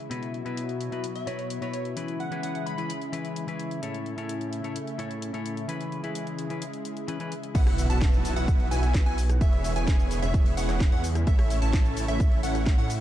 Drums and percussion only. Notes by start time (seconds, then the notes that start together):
0.11 closed hi-hat
0.23 closed hi-hat
0.34 closed hi-hat
0.46 closed hi-hat
0.57 closed hi-hat
0.69 closed hi-hat
0.81 closed hi-hat
0.92 closed hi-hat
1.04 closed hi-hat
1.15 closed hi-hat
1.27 closed hi-hat
1.39 closed hi-hat
1.50 closed hi-hat
1.62 closed hi-hat
1.73 closed hi-hat
1.85 closed hi-hat
1.97 closed hi-hat
2.08 closed hi-hat
2.20 closed hi-hat
2.32 closed hi-hat
2.43 closed hi-hat
2.55 closed hi-hat
2.67 closed hi-hat
2.78 closed hi-hat
2.90 closed hi-hat
3.01 closed hi-hat
3.13 closed hi-hat
3.25 closed hi-hat
3.36 closed hi-hat
3.48 closed hi-hat
3.59 closed hi-hat
3.71 closed hi-hat
3.83 closed hi-hat
3.94 closed hi-hat
4.06 closed hi-hat
4.18 closed hi-hat
4.29 closed hi-hat
4.41 closed hi-hat
4.53 closed hi-hat
4.64 closed hi-hat
4.76 closed hi-hat
4.87 closed hi-hat
4.99 closed hi-hat
5.11 closed hi-hat
5.22 closed hi-hat
5.34 closed hi-hat
5.46 closed hi-hat
5.57 closed hi-hat
5.69 closed hi-hat
5.81 closed hi-hat
5.92 closed hi-hat
6.04 closed hi-hat
6.15 closed hi-hat
6.27 closed hi-hat
6.39 closed hi-hat
6.50 closed hi-hat
6.62 closed hi-hat
6.73 closed hi-hat
6.85 closed hi-hat
6.97 closed hi-hat
7.08 closed hi-hat
7.20 closed hi-hat
7.32 closed hi-hat
7.43 closed hi-hat
7.55 kick, closed hi-hat, crash, shaker
7.67 cross-stick, open hi-hat
7.78 open hi-hat, shaker
7.90 closed hi-hat, shaker
8.01 kick, snare, closed hi-hat, shaker
8.13 closed hi-hat, shaker
8.25 open hi-hat, shaker
8.37 closed hi-hat, shaker
8.48 kick, closed hi-hat, shaker
8.60 closed hi-hat
8.71 open hi-hat, shaker
8.83 cross-stick, closed hi-hat, shaker
8.94 kick, snare, closed hi-hat, shaker
9.06 closed hi-hat
9.18 open hi-hat, shaker
9.29 cross-stick, closed hi-hat, shaker
9.41 kick, closed hi-hat, shaker
9.53 closed hi-hat
9.64 open hi-hat, shaker
9.76 closed hi-hat, shaker
9.87 kick, snare, closed hi-hat, shaker
9.99 closed hi-hat, shaker
10.11 open hi-hat, shaker
10.23 closed hi-hat, shaker
10.34 kick, closed hi-hat, shaker
10.46 open hi-hat
10.57 open hi-hat, shaker
10.69 cross-stick, snare, closed hi-hat, shaker
10.80 kick, snare, closed hi-hat, shaker
10.92 closed hi-hat
11.04 open hi-hat, shaker
11.15 cross-stick, closed hi-hat, shaker
11.27 kick, closed hi-hat, shaker
11.39 cross-stick, open hi-hat
11.50 open hi-hat, shaker
11.62 closed hi-hat, shaker
11.73 kick, snare, closed hi-hat, shaker
11.85 closed hi-hat, shaker
11.97 open hi-hat, shaker
12.08 closed hi-hat, shaker
12.20 kick, closed hi-hat, shaker
12.32 closed hi-hat
12.43 open hi-hat, shaker
12.55 cross-stick, closed hi-hat, shaker
12.66 kick, snare, closed hi-hat, shaker
12.78 closed hi-hat
12.90 open hi-hat, shaker